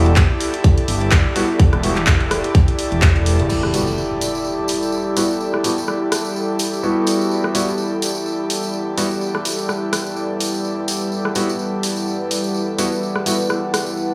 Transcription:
0.00 0.15 E1 loud
0.00 14.14 E4 medium
0.00 14.14 G4 medium
0.00 14.14 A4 medium
0.00 14.14 D5 medium
0.06 closed hi-hat soft
0.16 kick loud
0.16 clap loud
0.16 closed hi-hat medium
0.41 open hi-hat loud
0.54 closed hi-hat medium
0.64 kick loud
0.64 closed hi-hat medium
0.78 closed hi-hat medium
0.88 1.23 G1 loud
0.88 open hi-hat loud
1.01 closed hi-hat soft
1.11 kick loud
1.11 clap loud
1.11 closed hi-hat medium
1.36 1.43 G3 medium
1.36 1.43 B3 medium
1.36 1.43 E4 medium
1.36 1.43 F#4 loud
1.36 open hi-hat loud
1.60 kick loud
1.60 closed hi-hat medium
1.73 2.18 E1 loud
1.73 cross-stick medium
1.73 closed hi-hat soft
1.83 1.91 G3 medium
1.83 1.91 B3 medium
1.83 1.91 E4 medium
1.83 1.91 F#4 medium
1.83 open hi-hat loud
1.96 clap soft
1.96 closed hi-hat soft
2.07 kick loud
2.07 cross-stick medium
2.07 clap loud
2.07 closed hi-hat medium
2.20 2.42 E1 medium
2.20 closed hi-hat soft
2.31 cross-stick medium
2.31 open hi-hat loud
2.44 closed hi-hat medium
2.55 kick loud
2.55 closed hi-hat medium
2.68 closed hi-hat medium
2.79 open hi-hat loud
2.92 3.37 E1 medium
2.92 closed hi-hat soft
3.02 kick loud
3.02 clap loud
3.02 closed hi-hat medium
3.16 closed hi-hat soft
3.26 open hi-hat loud
3.39 3.48 F#1 loud
3.39 closed hi-hat soft
3.49 14.14 G3 medium
3.49 14.14 E4 medium
3.49 14.14 B4 medium
3.49 11.08 F#5 medium
3.49 crash medium
3.49 tambourine soft
3.49 impact medium
3.63 cross-stick medium
3.74 3.85 G3 medium
3.74 3.85 B3 medium
3.74 3.85 E4 medium
3.74 3.85 F#4 medium
3.74 open hi-hat medium
3.74 tambourine medium
3.87 tambourine medium
3.98 tambourine soft
4.21 open hi-hat loud
4.21 tambourine medium
4.35 tambourine soft
4.45 tambourine soft
4.68 open hi-hat medium
4.68 tambourine medium
4.82 tambourine medium
4.92 tambourine soft
5.16 5.24 G3 medium
5.16 5.24 B3 medium
5.16 5.24 E4 medium
5.16 5.24 F#4 medium
5.16 open hi-hat loud
5.16 tambourine medium
5.31 tambourine medium
5.41 tambourine soft
5.54 cross-stick medium
5.64 5.72 G3 medium
5.64 5.72 B3 medium
5.64 5.72 E4 medium
5.64 5.72 F#4 medium
5.64 open hi-hat loud
5.64 tambourine medium
5.78 tambourine medium
5.88 cross-stick medium
5.88 tambourine soft
6.12 cross-stick medium
6.12 open hi-hat loud
6.12 tambourine medium
6.25 tambourine soft
6.36 tambourine soft
6.59 open hi-hat loud
6.59 tambourine medium
6.73 tambourine medium
6.83 7.52 G3 medium
6.83 7.52 B3 medium
6.83 7.52 E4 medium
6.83 7.52 F#4 medium
6.83 tambourine soft
7.07 open hi-hat loud
7.07 tambourine medium
7.21 tambourine medium
7.31 tambourine soft
7.44 cross-stick medium
7.55 7.66 G3 medium
7.55 7.66 B3 medium
7.55 7.66 E4 medium
7.55 7.66 F#4 medium
7.55 open hi-hat loud
7.55 tambourine loud
7.68 tambourine medium
7.78 tambourine soft
8.02 open hi-hat loud
8.02 tambourine medium
8.15 tambourine medium
8.26 tambourine soft
8.50 open hi-hat loud
8.50 tambourine medium
8.63 tambourine soft
8.74 tambourine soft
8.98 9.05 G3 medium
8.98 9.05 B3 medium
8.98 9.05 E4 medium
8.98 9.05 F#4 medium
8.98 open hi-hat loud
8.98 tambourine medium
9.11 tambourine soft
9.21 tambourine soft
9.35 cross-stick medium
9.45 open hi-hat loud
9.45 tambourine medium
9.59 tambourine soft
9.69 cross-stick medium
9.69 tambourine soft
9.93 cross-stick medium
9.93 open hi-hat loud
9.93 tambourine medium
10.06 tambourine soft
10.16 tambourine soft
10.40 open hi-hat loud
10.40 tambourine medium
10.54 tambourine soft
10.65 tambourine soft
10.88 open hi-hat loud
10.88 tambourine medium
11.01 tambourine medium
11.12 14.14 F#5 medium
11.12 tambourine soft
11.25 cross-stick medium
11.35 11.47 G3 medium
11.35 11.47 B3 medium
11.35 11.47 E4 medium
11.35 11.47 F#4 medium
11.35 open hi-hat medium
11.35 tambourine medium
11.49 tambourine medium
11.59 tambourine soft
11.83 open hi-hat loud
11.83 tambourine medium
11.96 tambourine soft
12.08 tambourine soft
12.31 open hi-hat loud
12.31 tambourine medium
12.44 tambourine soft
12.54 tambourine soft
12.79 12.86 G3 medium
12.79 12.86 B3 medium
12.79 12.86 E4 medium
12.79 12.86 F#4 medium
12.79 open hi-hat loud
12.79 tambourine medium
12.92 tambourine soft
13.03 tambourine soft
13.16 cross-stick medium
13.26 13.33 G3 medium
13.26 13.33 B3 medium
13.26 13.33 E4 medium
13.26 13.33 F#4 medium
13.26 open hi-hat medium
13.26 tambourine medium
13.40 tambourine soft
13.50 cross-stick medium
13.50 tambourine soft
13.74 cross-stick medium
13.74 open hi-hat medium
13.74 tambourine medium
13.87 tambourine soft
13.97 tambourine soft

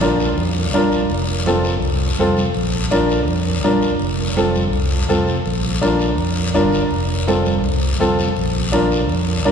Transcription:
0.00 0.38 A#1 medium
0.00 0.27 D4 medium
0.00 0.27 F4 medium
0.00 0.27 A#4 medium
0.00 high conga medium
0.00 short guiro medium
0.20 short guiro medium
0.38 0.74 F2 medium
0.38 high conga soft
0.38 long guiro medium
0.74 1.03 A#1 medium
0.74 0.99 D4 medium
0.74 1.00 F4 medium
0.74 1.00 A#4 medium
0.74 high conga medium
0.74 short guiro medium
0.92 high conga medium
0.92 short guiro medium
1.10 1.83 F1 medium
1.10 long guiro medium
1.29 high conga soft
1.46 1.72 C4 medium
1.46 1.72 F4 medium
1.46 1.72 A4 medium
1.46 high conga medium
1.46 short guiro medium
1.64 short guiro medium
1.82 2.20 C2 medium
1.82 high conga soft
1.82 long guiro medium
2.18 2.48 F1 medium
2.18 2.45 C4 medium
2.18 2.45 F4 medium
2.18 2.45 A4 medium
2.18 high conga medium
2.18 short guiro medium
2.37 high conga medium
2.37 short guiro medium
2.54 3.28 A#1 medium
2.54 long guiro medium
2.74 high conga soft
2.90 3.17 D4 medium
2.90 3.17 F4 medium
2.90 3.17 A#4 medium
2.90 high conga medium
2.90 short guiro medium
3.09 short guiro medium
3.28 3.64 F2 medium
3.28 high conga soft
3.28 long guiro medium
3.63 3.93 A#1 medium
3.63 3.90 D4 medium
3.63 3.90 F4 medium
3.63 3.90 A#4 medium
3.63 high conga medium
3.63 short guiro medium
3.82 short guiro medium
3.99 4.73 F1 medium
3.99 long guiro medium
4.19 high conga soft
4.36 4.62 C4 medium
4.36 4.62 F4 medium
4.36 4.63 A4 medium
4.36 high conga medium
4.36 short guiro medium
4.55 high conga medium
4.55 short guiro medium
4.73 5.10 C2 medium
4.73 high conga soft
4.73 long guiro medium
5.09 5.39 F1 medium
5.09 5.35 C4 medium
5.09 5.35 F4 medium
5.09 5.35 A4 medium
5.09 high conga medium
5.09 short guiro medium
5.27 short guiro medium
5.46 6.19 A#1 medium
5.46 long guiro medium
5.64 high conga soft
5.82 6.08 D4 medium
5.82 6.08 F4 medium
5.82 6.08 A#4 medium
5.82 high conga medium
5.82 short guiro medium
5.99 short guiro medium
6.18 6.57 F2 medium
6.18 high conga soft
6.18 long guiro medium
6.54 6.84 G1 medium
6.54 6.80 D4 medium
6.54 6.81 F4 medium
6.54 6.81 A#4 medium
6.54 high conga medium
6.54 short guiro medium
6.72 short guiro medium
6.91 7.64 F1 medium
6.91 long guiro medium
7.11 high conga soft
7.27 7.53 C4 medium
7.27 7.53 F4 medium
7.27 7.54 A4 medium
7.27 high conga medium
7.27 short guiro medium
7.45 high conga medium
7.45 short guiro medium
7.64 8.01 C2 medium
7.64 high conga soft
7.64 long guiro medium
8.00 8.30 F1 medium
8.00 8.26 C4 medium
8.00 8.26 F4 medium
8.00 8.26 A4 medium
8.00 high conga medium
8.00 short guiro medium
8.19 high conga medium
8.19 short guiro medium
8.36 9.11 A#1 medium
8.36 long guiro medium
8.55 high conga soft
8.72 8.98 D4 medium
8.72 8.99 F4 medium
8.72 8.99 A#4 medium
8.72 high conga medium
8.72 short guiro medium
8.91 short guiro medium
9.09 9.47 F2 medium
9.09 high conga soft
9.09 long guiro medium
9.45 9.52 A#1 medium
9.45 9.52 D4 medium
9.45 9.52 F4 medium
9.45 9.52 A#4 medium
9.45 high conga medium
9.45 short guiro medium

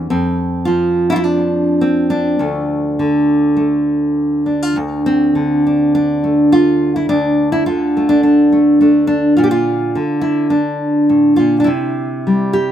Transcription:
0.00 2.39 G3 soft
0.10 2.36 F2 medium
0.10 1.23 C4 medium
0.65 2.99 F3 medium
0.65 1.09 F4 medium
1.10 1.14 E4 loud
1.10 1.17 F4 medium
1.16 1.24 E4 loud
1.24 2.09 D4 medium
1.81 2.39 C4 medium
2.10 4.45 D4 medium
2.39 4.75 D2 medium
2.39 3.55 A3 medium
2.99 5.34 D3 medium
3.57 4.73 A3 soft
4.46 4.62 D4 soft
4.62 4.77 F4 soft
4.76 7.08 D2 medium
5.06 6.23 C4 medium
5.35 7.66 D3 medium
5.67 5.94 D4 soft
5.95 6.52 D4 medium
6.24 7.07 A3 soft
6.52 6.95 F4 loud
6.96 7.09 E4 medium
7.09 9.37 D2 medium
7.09 7.52 D4 medium
7.52 7.66 E4 medium
7.66 9.94 D3 medium
7.66 8.09 F4 medium
7.97 8.51 A3 soft
8.09 8.22 D4 medium
8.23 8.80 D4 medium
8.52 8.79 A3 soft
8.81 9.34 A3 soft
8.81 9.06 D4 soft
9.07 9.36 D4 medium
9.37 9.95 A#2 medium
9.37 9.43 F4 medium
9.44 9.51 G4 medium
9.51 10.21 F4 medium
9.95 11.68 D3 medium
10.21 10.50 E4 medium
10.50 11.36 D4 medium
11.09 11.38 A2 medium
11.36 11.66 A#2 medium
11.36 11.59 F4 medium
11.60 11.67 D4 medium
11.64 12.72 C3 medium
11.64 12.72 E4 medium
12.27 12.72 G3 medium
12.53 12.72 G4 loud

